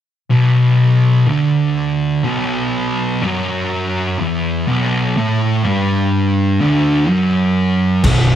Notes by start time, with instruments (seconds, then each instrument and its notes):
0.30 distorted electric guitar B1 B2
1.27 distorted electric guitar D2 D3
2.24 distorted electric guitar B1 B2
3.22 distorted electric guitar F#2 F#3
4.19 distorted electric guitar E2 E3
4.68 distorted electric guitar B1 B2
5.17 distorted electric guitar A2 A3
5.64 distorted electric guitar G2 G3
6.61 distorted electric guitar D2 D3
7.08 distorted electric guitar F#2 F#3
8.04 picked electric bass B0, distorted electric guitar B1 B2, kick, crash